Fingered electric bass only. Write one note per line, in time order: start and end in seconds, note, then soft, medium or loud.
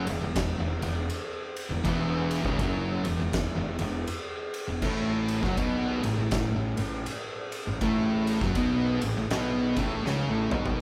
0.09 0.22 E1 medium
0.23 0.36 E1 medium
0.36 0.58 E1 medium
0.59 0.81 E1 medium
0.82 1.09 E1 medium
1.71 1.84 E1 medium
1.85 2.41 E1 loud
2.44 2.58 C#1 loud
2.60 3.02 F#1 medium
3.06 3.19 E1 medium
3.21 3.33 E1 medium
3.33 3.55 E1 medium
3.58 3.79 E1 medium
3.81 4.07 E1 medium
4.70 4.82 E1 medium
4.82 5.39 A1 loud
5.43 5.56 F#1 loud
5.57 6.00 B1 loud
6.05 6.17 A1 medium
6.19 6.31 A1 medium
6.32 6.54 A1 medium
6.55 6.76 A1 medium
6.79 7.05 A1 medium
7.67 7.80 A1 medium
7.81 8.38 A1 loud
8.41 8.55 F#1 loud
8.56 8.99 B1 medium
9.03 9.16 A1 medium
9.17 9.30 A1 medium
9.30 9.74 B1 medium
9.77 10.04 A1 medium
10.05 10.27 C#2 loud
10.28 10.50 A1 medium
10.52 10.78 B1 loud